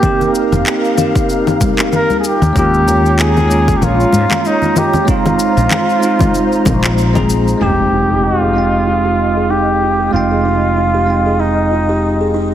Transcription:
Already playing: tine electric piano C4 D#4 G4, analog synth pad D#4 A#4, flugelhorn G4
0.00 tine electric piano A#3 C4 D#4, analog synth pad F5, kick, low conga, shaker
0.05 tine electric piano G4
0.21 low conga, shaker
0.35 shaker
0.52 fretless electric bass F1, low conga, shaker
0.66 clap, shaker
0.84 shaker
0.95 tine electric piano A#3 C4 D#4, low conga, shaker
1.00 tine electric piano G4
1.16 kick, shaker
1.29 shaker
1.47 low conga, shaker
1.61 kick, high conga, shaker
1.79 clap, shaker
1.92 flugelhorn A#4, low conga, shaker
2.10 high conga, shaker
2.19 flugelhorn G#4
2.24 analog synth pad F4 C#5 A#5, flugelhorn G4, shaker
2.42 fretless electric bass D#2, low conga, shaker
2.53 fretless electric bass D#2, tine electric piano G#3 A#3 C#4, kick, shaker
2.58 tine electric piano F4, flugelhorn G4
2.74 shaker
2.88 low conga, shaker
3.06 shaker
3.19 flugelhorn G#4, clap, shaker
3.37 low conga, shaker
3.48 tine electric piano G#3 A#3 C#4, shaker
3.53 tine electric piano F4
3.68 kick, shaker
3.77 flugelhorn G4
3.81 fretless electric bass A#1, flugelhorn F4, low conga, shaker
4.00 shaker
4.12 fretless electric bass G#2, high conga, shaker
4.31 clap, low conga, shaker
4.45 flugelhorn D#4, shaker
4.62 low conga, shaker
4.76 flugelhorn G4, low conga, shaker
4.93 low conga, shaker
5.05 tine electric piano G#3 C4 D#4, analog synth pad D#4 C5, kick, shaker
5.10 flugelhorn F4, tine electric piano F4
5.26 low conga, shaker
5.39 shaker
5.57 fretless electric bass A#1, shaker
5.71 clap, low conga, shaker
5.89 shaker
6.00 tine electric piano G#3 C4 D#4, shaker
6.05 tine electric piano F4
6.19 kick, high conga, low conga, shaker
6.34 shaker
6.52 shaker
6.65 fretless electric bass A#1, kick, high conga, low conga, shaker
6.84 clap, shaker
6.98 shaker
7.14 tine electric piano G#3 C4 D#4 G#4, kick, high conga, low conga, shaker
7.30 shaker
7.48 shaker
7.58 fretless electric bass F1, tine electric piano G#3 C4 D#4, kalimba D#4, flugelhorn G4, analog synth pad D#5, impact, shaker
7.63 tine electric piano G4
7.79 shaker
7.92 kalimba F4, shaker
8.10 kalimba G4, shaker
8.24 flugelhorn F4, shaker
8.42 kalimba G#4, shaker
8.53 tine electric piano G#3 C4 D#4, kalimba D#4
8.58 tine electric piano G5
8.74 shaker
8.87 kalimba F4
9.05 kalimba G4
9.37 kalimba G#4
9.50 kalimba D#4, flugelhorn G4
9.82 kalimba F4
10.00 kalimba G4
10.11 fretless electric bass F1, tine electric piano G#3 C4 D#4, flugelhorn F4
10.16 tine electric piano G5
10.32 kalimba G#4
10.45 kalimba D#4
10.77 kalimba F4
10.94 kalimba G4
11.05 tine electric piano G#3 C4 D#4
11.10 tine electric piano G5
11.26 kalimba G#4
11.40 kalimba D#4, flugelhorn D#4
11.71 kalimba F4, shaker
11.89 kalimba G4
12.21 kalimba G#4
12.34 kalimba D#4, shaker

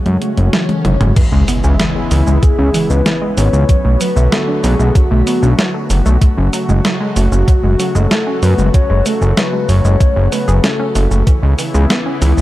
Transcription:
Already playing: analog synth pad C#3 F#3 G#3 A3 F#4, soft synth lead F#4, swell
0.06 analog synth bass F#2, synth arpeggio sound G#3, closed hi-hat
0.22 synth arpeggio sound A3, closed hi-hat
0.37 analog synth bass F#1, synth arpeggio sound C#4, closed hi-hat
0.53 synth arpeggio sound F#3, snare, closed hi-hat, high tom
0.69 synth arpeggio sound G#3, closed hi-hat, high tom
0.85 analog synth bass F#1, synth arpeggio sound F#3, closed hi-hat, mid tom
1.01 analog synth bass F#1, synth arpeggio sound G#3, closed hi-hat, mid tom
1.16 analog synth pad C#3 E3 G#3 B3 E4, synth arpeggio sound E3, kick, closed hi-hat, crash, impact, shaker
1.32 analog synth bass C#2, synth arpeggio sound G#3
1.48 synth arpeggio sound B3, open hi-hat, shaker
1.64 analog synth bass C#2, synth arpeggio sound C#4, shaker
1.80 synth arpeggio sound E3, snare, closed hi-hat, shaker
1.95 synth arpeggio sound G#3
2.11 analog synth bass C#2, synth arpeggio sound E3, soft synth lead E4, open hi-hat, shaker
2.27 analog synth bass C#2, synth arpeggio sound G#3, shaker
2.43 synth arpeggio sound B3, soft synth lead G#4, kick, closed hi-hat, shaker
2.58 analog synth bass C#2, synth arpeggio sound C#4
2.74 synth arpeggio sound E3, open hi-hat, shaker
2.90 analog synth bass C#2, synth arpeggio sound G#3, soft synth lead B4, shaker
3.06 synth arpeggio sound E3, snare, closed hi-hat, shaker
3.22 synth arpeggio sound G#3
3.37 analog synth bass G#1, synth arpeggio sound B3, soft synth lead C#5, open hi-hat, shaker
3.53 analog synth bass C#2, synth arpeggio sound C#4, shaker
3.69 analog synth pad D3 F#3 A3 F#4, synth arpeggio sound F#3, kick, closed hi-hat, shaker
3.85 analog synth bass B1, synth arpeggio sound A3
4.01 synth arpeggio sound F#3, soft synth lead B4, open hi-hat, shaker
4.16 analog synth bass B1, synth arpeggio sound A3, shaker
4.32 synth arpeggio sound B3, soft synth lead A4, snare, closed hi-hat, shaker
4.48 synth arpeggio sound D4
4.64 analog synth bass B1, synth arpeggio sound F#3, soft synth lead G#4, open hi-hat, shaker
4.79 analog synth bass B1, synth arpeggio sound A3, shaker
4.95 synth arpeggio sound F#3, soft synth lead F#4, kick, closed hi-hat, shaker
5.11 analog synth bass B1, synth arpeggio sound A3
5.27 synth arpeggio sound B3, open hi-hat, shaker
5.43 analog synth bass B1, synth arpeggio sound D4, shaker
5.59 synth arpeggio sound F#3, snare, closed hi-hat, shaker
5.74 synth arpeggio sound A3
5.90 analog synth bass F#1, synth arpeggio sound F#3, open hi-hat, shaker
6.06 analog synth bass B1, synth arpeggio sound A3, shaker
6.22 analog synth pad C#3 F#3 A3, synth arpeggio sound A3, kick, closed hi-hat, shaker
6.37 analog synth bass F#1, synth arpeggio sound C#4
6.53 synth arpeggio sound F#3, open hi-hat, shaker
6.69 analog synth bass F#1, synth arpeggio sound G#3, shaker
6.85 synth arpeggio sound F#3, snare, closed hi-hat, shaker
7.01 synth arpeggio sound G#3
7.16 analog synth bass F#1, synth arpeggio sound A3, soft synth lead F#4, open hi-hat, shaker
7.32 analog synth bass F#1, synth arpeggio sound C#4, shaker
7.48 synth arpeggio sound F#3, kick, closed hi-hat, shaker
7.63 analog synth bass F#1, synth arpeggio sound G#3
7.79 synth arpeggio sound F#3, open hi-hat, shaker
7.95 analog synth bass F#1, synth arpeggio sound G#3, soft synth lead A4, shaker
8.11 synth arpeggio sound A3, snare, closed hi-hat, shaker
8.27 synth arpeggio sound C#4
8.43 analog synth bass F#2, synth arpeggio sound F#3, soft synth lead B4, open hi-hat, shaker
8.58 analog synth bass F#1, synth arpeggio sound G#3, shaker
8.74 synth arpeggio sound F#3, soft synth lead C#5, kick, closed hi-hat, shaker
8.90 analog synth bass F#1, synth arpeggio sound G#3
9.06 synth arpeggio sound A3, soft synth lead A4, open hi-hat, shaker
9.21 analog synth bass F#1, synth arpeggio sound C#4, shaker
9.37 synth arpeggio sound F#3, soft synth lead B4, snare, closed hi-hat, shaker
9.53 synth arpeggio sound G#3
9.69 analog synth bass F#1, synth arpeggio sound F#3, soft synth lead C#5, open hi-hat, shaker
9.85 analog synth bass F#1, synth arpeggio sound G#3, shaker
10.01 synth arpeggio sound A3, kick, closed hi-hat, shaker
10.16 analog synth bass F#1, synth arpeggio sound C#4
10.32 synth arpeggio sound A3, soft synth lead B4, open hi-hat, shaker
10.48 analog synth bass F#1, synth arpeggio sound G#4, shaker
10.64 synth arpeggio sound C#4, soft synth lead A4, snare, closed hi-hat, shaker
10.80 synth arpeggio sound C#4
10.95 analog synth bass F#1, synth arpeggio sound A3, open hi-hat, shaker
11.11 analog synth bass F#1, synth arpeggio sound A3, shaker
11.27 synth arpeggio sound E3, analog synth pad E3 B3 E4, kick, closed hi-hat, shaker
11.43 analog synth bass C#2, synth arpeggio sound G#3
11.59 synth arpeggio sound E3, open hi-hat, shaker
11.74 analog synth bass C#2, synth arpeggio sound G#3, shaker
11.90 synth arpeggio sound B3, snare, closed hi-hat, shaker
12.06 synth arpeggio sound C#4
12.22 analog synth bass C#2, synth arpeggio sound E3, soft synth lead E4, open hi-hat, shaker
12.37 analog synth bass C#2, synth arpeggio sound G#3, shaker

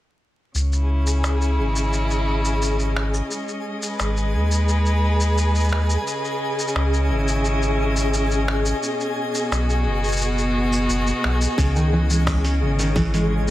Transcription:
0.54 sub bass C#2, string quartet C#3, synth texture G#4 G#5, shaker
0.61 string quartet C#4
0.72 shaker
0.78 string quartet E4
1.07 shaker
1.24 finger snap, shaker
1.41 shaker
1.58 sub bass G#1
1.69 string quartet D#5
1.76 shaker
1.93 shaker
2.10 shaker
2.45 shaker
2.62 shaker
2.79 shaker
2.97 finger snap
3.14 shaker
3.31 string quartet G#3, shaker
3.48 shaker
3.82 string quartet G#4, shaker
3.90 string quartet B4
3.99 sub bass G#1, finger snap, shaker
4.17 shaker
4.34 sub bass D#2
4.51 shaker
4.68 shaker
4.86 shaker
5.20 shaker
5.38 shaker
5.55 shaker
5.59 shaker
5.64 shaker
5.68 shaker
5.72 finger snap, shaker
5.77 shaker
5.81 shaker
5.85 shaker
5.90 shaker
6.06 string quartet C#3, shaker
6.25 shaker
6.58 string quartet C#4, shaker
6.68 shaker
6.75 sub bass C#2, finger snap
6.93 shaker
6.99 string quartet E4
7.10 sub bass G#1
7.28 shaker
7.45 shaker
7.62 shaker
7.96 shaker
8.14 shaker
8.31 shaker
8.48 finger snap
8.66 shaker
8.83 string quartet B2, shaker
9.00 shaker
9.25 string quartet B3
9.35 shaker
9.42 string quartet F#4
9.51 sub bass B1, finger snap, shaker
9.70 shaker
9.85 sub bass F#1
10.04 shaker
10.08 shaker
10.12 shaker
10.17 shaker
10.21 shaker
10.38 shaker
10.73 shaker
10.89 sub bass F#1, shaker
11.07 shaker
11.24 sub bass B1, finger snap
11.41 shaker
11.58 sub bass C#2, steel-string acoustic guitar C#3, string quartet C#3, synth texture G#4 G#5, kick, open hi-hat, shaker
11.75 steel-string acoustic guitar D#3, shaker
11.93 steel-string acoustic guitar E3
12.02 string quartet C#4
12.10 steel-string acoustic guitar G#3, shaker
12.27 finger snap, kick, open hi-hat, shaker
12.44 steel-string acoustic guitar C#4, open hi-hat, shaker
12.61 sub bass G#1, steel-string acoustic guitar C#3
12.79 steel-string acoustic guitar D#3, open hi-hat, shaker
12.96 steel-string acoustic guitar E3, kick, open hi-hat, shaker
13.14 steel-string acoustic guitar G#3, open hi-hat, shaker

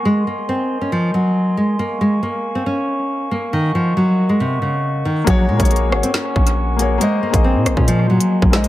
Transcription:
Already playing: glass harmonica G#5
0.05 nylon-string guitar G#3, glass harmonica A#4 D#5 C6
0.27 nylon-string guitar A#3
0.49 nylon-string guitar C4
0.81 nylon-string guitar C#4
0.92 nylon-string guitar F3
1.14 nylon-string guitar F#3
1.57 nylon-string guitar G#3
1.79 nylon-string guitar A#3, glass harmonica F5 C#6
2.01 nylon-string guitar G#3
2.23 nylon-string guitar A#3
2.55 nylon-string guitar C4
2.66 nylon-string guitar C#4
3.31 nylon-string guitar A#3
3.53 nylon-string guitar D#3, glass harmonica A#4 D#5 F#5
3.75 nylon-string guitar F3
3.97 nylon-string guitar F#3
4.29 nylon-string guitar G#3
4.40 nylon-string guitar C3
4.62 nylon-string guitar C#3
5.05 nylon-string guitar D#3
5.24 808-style bass A#1, nylon-string guitar F#3, grand piano A#3 F#4 G#4, glass harmonica G#5 C#6, kick, closed hi-hat
5.30 grand piano C#5
5.49 808-style bass A#2, nylon-string guitar G#3
5.57 808-style bass A#1, grand piano A#3 F#4 G#4, kick, closed hi-hat
5.63 grand piano C#5, closed hi-hat
5.71 nylon-string guitar A#3, closed hi-hat
5.76 closed hi-hat
5.89 808-style bass G#1, grand piano A#3 F#4 G#4, cross-stick
5.95 grand piano C#5
6.03 nylon-string guitar C4, closed hi-hat
6.14 nylon-string guitar C#4, snare
6.36 808-style bass A#1, kick
6.47 closed hi-hat
6.77 grand piano A#3 F#4 G#4, nylon-string guitar A#3, closed hi-hat
6.82 grand piano C#5
6.98 nylon-string guitar G#3, grand piano A#3 G#4 C5, glass harmonica D#5 G#5 C6, closed hi-hat
7.04 grand piano D#5
7.23 nylon-string guitar A#3
7.30 808-style bass A#1, grand piano A#3 G#4 C5, kick, closed hi-hat
7.35 grand piano D#5
7.44 nylon-string guitar C4
7.55 808-style bass A#2
7.66 808-style bass A#1, cross-stick, closed hi-hat
7.77 808-style bass A#2, nylon-string guitar C#4, kick
7.88 nylon-string guitar F3, closed hi-hat
8.10 nylon-string guitar F#3
8.20 closed hi-hat
8.42 808-style bass A#1, kick
8.50 nylon-string guitar G#3, grand piano A#3 G#4 C5, snare, closed hi-hat
8.56 grand piano D#5
8.64 closed hi-hat

